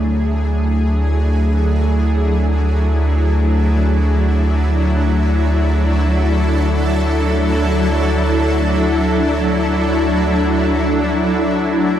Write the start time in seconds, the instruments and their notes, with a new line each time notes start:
Already playing: analog synth bass D2, synth drone D3 A3, ambient pad F#3 D4 E4 G#4
4.87 ambient pad A4